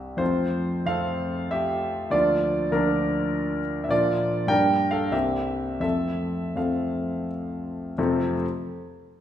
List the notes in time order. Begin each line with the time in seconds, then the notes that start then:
Already playing: C2 G3 C4 G4 E5
0.17 F2 F3 A3 C4 F4 C5
0.86 F2 F3 A3 C4 A4 F5
1.51 G4 E5
2.10 D2 F3 A#3 D4 F4 D5
2.71 D2 F3 A#3 D4 A#4
3.84 E5
3.89 A#2 F3 A#3 D4 F4 D5
4.47 G2 G3 A#3 D4 A#4 G5
4.91 A4 F5
5.11 C2 G3 A#3 C4 G4 E5
5.80 F2 F3 A3 C4 A4 E5
6.55 F2 F3 A3 C4 A4 F5
7.98 F2 C3 A3 C4 F4 A4